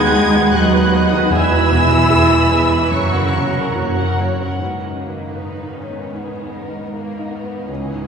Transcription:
Already playing: D#2 D#3 G#3 B3 D#4 F#4 G#4 B4 F#5 B5 G#6
0.14 D#3 D#4 F#4 D#5
0.34 B3 D#4 B4 F#5
0.52 D#2 F#3 D#4 F#4 D#5 F#5 B5 F#6
0.73 B3 D#4 B4 F#5
0.91 B3 D#4 F#4 D#5
1.09 D#3 B3 D#4 B4 F#5 D#6
1.29 E2 E3 G#3 E4 G#4 E5 G#5 B5 E6
1.50 B3 E4 B4 B5
1.70 B2 G#3 G#4 E5 G#5
1.91 B3 E4 B4 B5
2.09 E2 G#3 G#4 E5 G#5
2.30 B3 E4 B4 B5
2.50 G#3 B3 G#4 E5 G#5
2.71 B3 E4 B4 B5
2.90 F#2 C#3 A#3 C#4 F#4 C#5 F#5 A#5 C#6
3.12 F#3 C#4 A#4 F#5
3.34 C#3 A#3 F#4 C#5
3.56 F#3 C#4 A#4 F#5
3.76 F#2 A#3 F#4 C#5
3.98 F#3 C#4 A#4 F#5
4.18 F#3 A#3 F#4 C#5
4.39 F#3 C#4 A#4 F#5
4.58 G#2 D#3 B3 B4
4.85 D#3
5.00 A#3
5.11 D#4
5.36 D#4 B4
5.62 D#4
5.77 C#4
5.89 B3
6.14 G#2 B3 G#4
6.42 D#3
6.54 A#4
6.67 D#4
6.92 D#3 A#3 A#4
7.19 D#4
7.30 B3
7.44 B3
7.68 C#2 E3 C#4 G#4
7.94 G#2

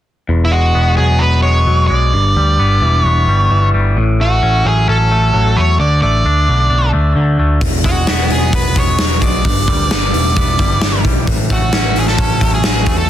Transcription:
0.29 E1 E2
0.45 E4
0.52 G#3 F#4
0.75 E1 B3
0.97 E1 F#3 G#4
1.19 E1 B3 B4
1.42 G#3 C#5
1.67 E1 F#3
1.87 B1 G#3 D5
2.13 G1 G2
2.36 D2 G3
2.59 G1 B3
2.82 E1 E3
3.02 E1 B3 C#5
3.28 G1 G3
3.51 G1 E3
3.74 G1 G3
3.96 A1 A2
4.20 A3 F#4
4.43 A1 C#4
4.65 A1 F#3 G#4
4.88 A1 C#4 A4
5.11 A3
5.34 A1 F#3
5.57 E2 A3 C#5
5.80 D2 D3 D5
6.02 A1 A3 D5
6.25 D2 D4
6.49 B1 D3
6.70 B1 D4
6.93 D2 A3
7.16 D2 D3
7.39 D2 A3
7.61 E1 E2, kick, open hi-hat
7.84 G#3 F#4, kick, open hi-hat
8.07 E1 B3, snare, open hi-hat
8.30 E1 F#3 G#4, open hi-hat
8.53 E1 B3 B4, kick, open hi-hat
8.76 G#3 C#5, kick, open hi-hat
8.99 E1 F#3, snare, open hi-hat
9.22 B1 G#3 D5, kick, open hi-hat
9.45 G1 G2, kick, open hi-hat
9.68 D2 G3, kick, open hi-hat
9.91 G1 B3, snare, open hi-hat
10.14 E1 E3, open hi-hat
10.36 E1 B3, kick, open hi-hat
10.59 G1 G3, kick, open hi-hat
10.81 G1 E3, snare, open hi-hat
11.05 B1 G3, kick, open hi-hat
11.27 A1 A2, kick, open hi-hat
11.50 A3 F#4, kick, open hi-hat
11.73 A1 C#4, snare, open hi-hat
11.95 A1 F#3 G#4, open hi-hat
12.08 A4, snare
12.18 A1 C#4, kick, open hi-hat
12.41 A3, kick, open hi-hat
12.54 G#4
12.64 A1 F#3, snare, open hi-hat
12.86 E2 A3, kick, open hi-hat
12.98 A4

